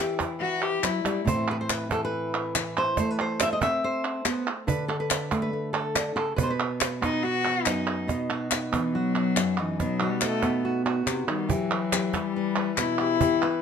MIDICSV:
0, 0, Header, 1, 5, 480
1, 0, Start_track
1, 0, Tempo, 426439
1, 1422, Time_signature, 4, 2, 24, 8
1, 15330, End_track
2, 0, Start_track
2, 0, Title_t, "Nylon-string guitar"
2, 0, Program_c, 0, 24
2, 0, Note_on_c, 0, 52, 67
2, 0, Note_on_c, 0, 64, 45
2, 0, Note_on_c, 0, 67, 67
2, 211, Note_off_c, 0, 64, 0
2, 216, Note_on_c, 0, 64, 55
2, 458, Note_on_c, 0, 71, 43
2, 930, Note_off_c, 0, 52, 0
2, 935, Note_on_c, 0, 54, 56
2, 937, Note_off_c, 0, 67, 0
2, 1171, Note_off_c, 0, 54, 0
2, 1175, Note_on_c, 0, 55, 52
2, 1391, Note_off_c, 0, 71, 0
2, 1402, Note_on_c, 0, 45, 64
2, 1405, Note_off_c, 0, 55, 0
2, 1409, Note_on_c, 0, 52, 46
2, 1410, Note_off_c, 0, 64, 0
2, 1414, Note_on_c, 0, 60, 45
2, 1427, Note_on_c, 0, 64, 43
2, 1441, Note_on_c, 0, 72, 85
2, 1672, Note_off_c, 0, 72, 0
2, 1701, Note_on_c, 0, 71, 84
2, 1801, Note_off_c, 0, 71, 0
2, 1811, Note_on_c, 0, 72, 79
2, 1922, Note_off_c, 0, 72, 0
2, 1922, Note_on_c, 0, 71, 85
2, 2127, Note_off_c, 0, 52, 0
2, 2131, Note_on_c, 0, 52, 60
2, 2152, Note_off_c, 0, 71, 0
2, 2160, Note_on_c, 0, 69, 76
2, 2271, Note_off_c, 0, 69, 0
2, 2303, Note_on_c, 0, 71, 90
2, 2628, Note_off_c, 0, 64, 0
2, 2632, Note_on_c, 0, 64, 42
2, 2866, Note_off_c, 0, 52, 0
2, 2866, Note_on_c, 0, 52, 60
2, 3123, Note_off_c, 0, 71, 0
2, 3129, Note_on_c, 0, 72, 85
2, 3304, Note_off_c, 0, 45, 0
2, 3310, Note_off_c, 0, 60, 0
2, 3352, Note_off_c, 0, 52, 0
2, 3353, Note_off_c, 0, 72, 0
2, 3357, Note_on_c, 0, 57, 69
2, 3362, Note_off_c, 0, 64, 0
2, 3366, Note_on_c, 0, 72, 98
2, 3495, Note_off_c, 0, 72, 0
2, 3495, Note_on_c, 0, 71, 86
2, 3599, Note_off_c, 0, 71, 0
2, 3610, Note_on_c, 0, 72, 85
2, 3854, Note_on_c, 0, 76, 99
2, 3958, Note_off_c, 0, 76, 0
2, 3970, Note_on_c, 0, 75, 86
2, 4063, Note_on_c, 0, 60, 60
2, 4076, Note_off_c, 0, 75, 0
2, 4082, Note_on_c, 0, 76, 94
2, 4313, Note_off_c, 0, 72, 0
2, 4326, Note_on_c, 0, 72, 95
2, 4781, Note_off_c, 0, 60, 0
2, 4786, Note_on_c, 0, 59, 66
2, 4792, Note_off_c, 0, 76, 0
2, 5024, Note_off_c, 0, 59, 0
2, 5241, Note_off_c, 0, 57, 0
2, 5258, Note_on_c, 0, 50, 70
2, 5260, Note_off_c, 0, 72, 0
2, 5265, Note_on_c, 0, 71, 89
2, 5492, Note_off_c, 0, 71, 0
2, 5497, Note_on_c, 0, 69, 85
2, 5619, Note_off_c, 0, 69, 0
2, 5627, Note_on_c, 0, 71, 87
2, 5745, Note_on_c, 0, 74, 83
2, 5980, Note_on_c, 0, 57, 63
2, 6087, Note_off_c, 0, 71, 0
2, 6101, Note_on_c, 0, 71, 88
2, 6213, Note_off_c, 0, 57, 0
2, 6226, Note_on_c, 0, 57, 48
2, 6445, Note_off_c, 0, 71, 0
2, 6450, Note_on_c, 0, 69, 80
2, 6583, Note_off_c, 0, 74, 0
2, 6683, Note_off_c, 0, 50, 0
2, 6697, Note_on_c, 0, 50, 62
2, 6916, Note_off_c, 0, 69, 0
2, 6926, Note_off_c, 0, 50, 0
2, 6931, Note_on_c, 0, 49, 56
2, 6931, Note_on_c, 0, 69, 79
2, 7159, Note_off_c, 0, 69, 0
2, 7164, Note_on_c, 0, 71, 76
2, 7176, Note_off_c, 0, 49, 0
2, 7183, Note_off_c, 0, 57, 0
2, 7183, Note_on_c, 0, 47, 70
2, 7237, Note_on_c, 0, 72, 67
2, 7308, Note_off_c, 0, 71, 0
2, 7321, Note_on_c, 0, 71, 70
2, 7326, Note_off_c, 0, 72, 0
2, 7898, Note_on_c, 0, 59, 59
2, 8153, Note_on_c, 0, 66, 45
2, 8377, Note_off_c, 0, 66, 0
2, 8390, Note_on_c, 0, 66, 42
2, 8620, Note_off_c, 0, 47, 0
2, 8622, Note_on_c, 0, 42, 57
2, 9069, Note_off_c, 0, 59, 0
2, 9089, Note_on_c, 0, 47, 65
2, 9091, Note_off_c, 0, 71, 0
2, 9096, Note_on_c, 0, 63, 53
2, 9100, Note_off_c, 0, 42, 0
2, 9329, Note_off_c, 0, 66, 0
2, 9342, Note_on_c, 0, 66, 62
2, 9581, Note_off_c, 0, 63, 0
2, 9586, Note_on_c, 0, 63, 55
2, 9817, Note_on_c, 0, 59, 54
2, 10068, Note_off_c, 0, 66, 0
2, 10073, Note_on_c, 0, 66, 54
2, 10299, Note_off_c, 0, 66, 0
2, 10313, Note_on_c, 0, 66, 54
2, 10533, Note_off_c, 0, 47, 0
2, 10548, Note_on_c, 0, 42, 61
2, 10781, Note_off_c, 0, 63, 0
2, 10793, Note_on_c, 0, 63, 52
2, 10996, Note_off_c, 0, 63, 0
2, 11023, Note_off_c, 0, 42, 0
2, 11024, Note_on_c, 0, 47, 64
2, 11032, Note_on_c, 0, 63, 52
2, 11265, Note_off_c, 0, 66, 0
2, 11281, Note_on_c, 0, 66, 63
2, 11497, Note_off_c, 0, 63, 0
2, 11511, Note_on_c, 0, 63, 51
2, 11737, Note_off_c, 0, 59, 0
2, 11742, Note_on_c, 0, 59, 56
2, 11972, Note_off_c, 0, 66, 0
2, 11985, Note_on_c, 0, 66, 57
2, 12205, Note_off_c, 0, 66, 0
2, 12219, Note_on_c, 0, 66, 56
2, 12445, Note_off_c, 0, 47, 0
2, 12449, Note_on_c, 0, 48, 58
2, 12686, Note_off_c, 0, 48, 0
2, 12690, Note_on_c, 0, 51, 59
2, 12915, Note_off_c, 0, 63, 0
2, 12925, Note_off_c, 0, 59, 0
2, 12930, Note_on_c, 0, 52, 64
2, 12934, Note_off_c, 0, 51, 0
2, 12937, Note_on_c, 0, 67, 57
2, 12938, Note_off_c, 0, 66, 0
2, 13180, Note_on_c, 0, 71, 61
2, 13420, Note_off_c, 0, 67, 0
2, 13425, Note_on_c, 0, 67, 59
2, 13664, Note_on_c, 0, 64, 60
2, 13913, Note_off_c, 0, 71, 0
2, 13917, Note_on_c, 0, 71, 59
2, 14138, Note_off_c, 0, 71, 0
2, 14151, Note_on_c, 0, 71, 52
2, 14384, Note_on_c, 0, 47, 64
2, 14622, Note_off_c, 0, 67, 0
2, 14638, Note_on_c, 0, 67, 50
2, 14833, Note_off_c, 0, 47, 0
2, 14837, Note_off_c, 0, 71, 0
2, 14840, Note_off_c, 0, 67, 0
2, 14856, Note_off_c, 0, 52, 0
2, 14861, Note_on_c, 0, 52, 67
2, 14867, Note_on_c, 0, 67, 58
2, 15115, Note_on_c, 0, 71, 71
2, 15330, Note_off_c, 0, 52, 0
2, 15330, Note_off_c, 0, 64, 0
2, 15330, Note_off_c, 0, 67, 0
2, 15330, Note_off_c, 0, 71, 0
2, 15330, End_track
3, 0, Start_track
3, 0, Title_t, "Cello"
3, 0, Program_c, 1, 42
3, 449, Note_on_c, 1, 66, 87
3, 699, Note_on_c, 1, 67, 86
3, 716, Note_off_c, 1, 66, 0
3, 931, Note_on_c, 1, 64, 74
3, 948, Note_off_c, 1, 67, 0
3, 1296, Note_off_c, 1, 64, 0
3, 7898, Note_on_c, 1, 63, 88
3, 8139, Note_on_c, 1, 66, 103
3, 8156, Note_off_c, 1, 63, 0
3, 8610, Note_on_c, 1, 63, 76
3, 8627, Note_off_c, 1, 66, 0
3, 9094, Note_off_c, 1, 63, 0
3, 9815, Note_on_c, 1, 52, 70
3, 10060, Note_on_c, 1, 54, 86
3, 10077, Note_off_c, 1, 52, 0
3, 10774, Note_on_c, 1, 52, 71
3, 10791, Note_off_c, 1, 54, 0
3, 11030, Note_on_c, 1, 54, 81
3, 11047, Note_off_c, 1, 52, 0
3, 11354, Note_on_c, 1, 55, 88
3, 11370, Note_off_c, 1, 54, 0
3, 11506, Note_off_c, 1, 55, 0
3, 11512, Note_on_c, 1, 57, 90
3, 11952, Note_off_c, 1, 57, 0
3, 12711, Note_on_c, 1, 55, 66
3, 12951, Note_on_c, 1, 54, 74
3, 12968, Note_off_c, 1, 55, 0
3, 13657, Note_on_c, 1, 55, 92
3, 13673, Note_off_c, 1, 54, 0
3, 14378, Note_off_c, 1, 55, 0
3, 14386, Note_on_c, 1, 64, 85
3, 15330, Note_off_c, 1, 64, 0
3, 15330, End_track
4, 0, Start_track
4, 0, Title_t, "Cajon"
4, 228, Note_on_c, 9, 36, 75
4, 228, Note_on_c, 9, 38, 30
4, 340, Note_off_c, 9, 36, 0
4, 340, Note_off_c, 9, 38, 0
4, 944, Note_on_c, 9, 38, 96
4, 1056, Note_off_c, 9, 38, 0
4, 1189, Note_on_c, 9, 38, 83
4, 1301, Note_off_c, 9, 38, 0
4, 1434, Note_on_c, 9, 36, 93
4, 1546, Note_off_c, 9, 36, 0
4, 1909, Note_on_c, 9, 38, 91
4, 2021, Note_off_c, 9, 38, 0
4, 2148, Note_on_c, 9, 36, 75
4, 2148, Note_on_c, 9, 38, 29
4, 2260, Note_off_c, 9, 36, 0
4, 2260, Note_off_c, 9, 38, 0
4, 2873, Note_on_c, 9, 38, 95
4, 2985, Note_off_c, 9, 38, 0
4, 3345, Note_on_c, 9, 36, 96
4, 3345, Note_on_c, 9, 38, 29
4, 3457, Note_off_c, 9, 36, 0
4, 3457, Note_off_c, 9, 38, 0
4, 3831, Note_on_c, 9, 38, 102
4, 3944, Note_off_c, 9, 38, 0
4, 4066, Note_on_c, 9, 36, 75
4, 4179, Note_off_c, 9, 36, 0
4, 4788, Note_on_c, 9, 38, 89
4, 4900, Note_off_c, 9, 38, 0
4, 5270, Note_on_c, 9, 36, 92
4, 5383, Note_off_c, 9, 36, 0
4, 5753, Note_on_c, 9, 38, 92
4, 5866, Note_off_c, 9, 38, 0
4, 5985, Note_on_c, 9, 36, 70
4, 5985, Note_on_c, 9, 38, 32
4, 6098, Note_off_c, 9, 36, 0
4, 6098, Note_off_c, 9, 38, 0
4, 6706, Note_on_c, 9, 38, 95
4, 6818, Note_off_c, 9, 38, 0
4, 7184, Note_on_c, 9, 36, 93
4, 7296, Note_off_c, 9, 36, 0
4, 7434, Note_on_c, 9, 38, 29
4, 7546, Note_off_c, 9, 38, 0
4, 7671, Note_on_c, 9, 38, 100
4, 7784, Note_off_c, 9, 38, 0
4, 7918, Note_on_c, 9, 36, 75
4, 7918, Note_on_c, 9, 38, 28
4, 8030, Note_off_c, 9, 36, 0
4, 8030, Note_off_c, 9, 38, 0
4, 8632, Note_on_c, 9, 38, 93
4, 8745, Note_off_c, 9, 38, 0
4, 9107, Note_on_c, 9, 36, 85
4, 9107, Note_on_c, 9, 38, 25
4, 9220, Note_off_c, 9, 36, 0
4, 9220, Note_off_c, 9, 38, 0
4, 9352, Note_on_c, 9, 38, 28
4, 9465, Note_off_c, 9, 38, 0
4, 9589, Note_on_c, 9, 38, 91
4, 9702, Note_off_c, 9, 38, 0
4, 9831, Note_on_c, 9, 36, 67
4, 9943, Note_off_c, 9, 36, 0
4, 10547, Note_on_c, 9, 38, 90
4, 10660, Note_off_c, 9, 38, 0
4, 11030, Note_on_c, 9, 36, 91
4, 11030, Note_on_c, 9, 38, 27
4, 11142, Note_off_c, 9, 36, 0
4, 11142, Note_off_c, 9, 38, 0
4, 11265, Note_on_c, 9, 38, 28
4, 11377, Note_off_c, 9, 38, 0
4, 11502, Note_on_c, 9, 38, 90
4, 11615, Note_off_c, 9, 38, 0
4, 11735, Note_on_c, 9, 36, 72
4, 11735, Note_on_c, 9, 38, 27
4, 11848, Note_off_c, 9, 36, 0
4, 11848, Note_off_c, 9, 38, 0
4, 12460, Note_on_c, 9, 38, 84
4, 12573, Note_off_c, 9, 38, 0
4, 12940, Note_on_c, 9, 36, 91
4, 13053, Note_off_c, 9, 36, 0
4, 13188, Note_on_c, 9, 38, 28
4, 13301, Note_off_c, 9, 38, 0
4, 13421, Note_on_c, 9, 38, 101
4, 13533, Note_off_c, 9, 38, 0
4, 13659, Note_on_c, 9, 36, 74
4, 13659, Note_on_c, 9, 38, 27
4, 13771, Note_off_c, 9, 36, 0
4, 13771, Note_off_c, 9, 38, 0
4, 14385, Note_on_c, 9, 38, 92
4, 14498, Note_off_c, 9, 38, 0
4, 14866, Note_on_c, 9, 36, 95
4, 14979, Note_off_c, 9, 36, 0
4, 15110, Note_on_c, 9, 38, 28
4, 15223, Note_off_c, 9, 38, 0
4, 15330, End_track
5, 0, Start_track
5, 0, Title_t, "Drums"
5, 940, Note_on_c, 9, 39, 75
5, 1053, Note_off_c, 9, 39, 0
5, 1909, Note_on_c, 9, 39, 81
5, 2022, Note_off_c, 9, 39, 0
5, 2874, Note_on_c, 9, 39, 78
5, 2986, Note_off_c, 9, 39, 0
5, 3827, Note_on_c, 9, 39, 81
5, 3940, Note_off_c, 9, 39, 0
5, 4787, Note_on_c, 9, 39, 77
5, 4900, Note_off_c, 9, 39, 0
5, 5744, Note_on_c, 9, 39, 85
5, 5856, Note_off_c, 9, 39, 0
5, 6706, Note_on_c, 9, 39, 77
5, 6819, Note_off_c, 9, 39, 0
5, 7660, Note_on_c, 9, 39, 82
5, 7772, Note_off_c, 9, 39, 0
5, 8619, Note_on_c, 9, 39, 77
5, 8731, Note_off_c, 9, 39, 0
5, 9580, Note_on_c, 9, 39, 80
5, 9693, Note_off_c, 9, 39, 0
5, 10542, Note_on_c, 9, 39, 76
5, 10654, Note_off_c, 9, 39, 0
5, 10777, Note_on_c, 9, 39, 37
5, 10889, Note_off_c, 9, 39, 0
5, 11493, Note_on_c, 9, 39, 84
5, 11605, Note_off_c, 9, 39, 0
5, 12463, Note_on_c, 9, 39, 69
5, 12575, Note_off_c, 9, 39, 0
5, 13430, Note_on_c, 9, 39, 80
5, 13542, Note_off_c, 9, 39, 0
5, 13667, Note_on_c, 9, 39, 42
5, 13780, Note_off_c, 9, 39, 0
5, 14379, Note_on_c, 9, 39, 75
5, 14492, Note_off_c, 9, 39, 0
5, 15330, End_track
0, 0, End_of_file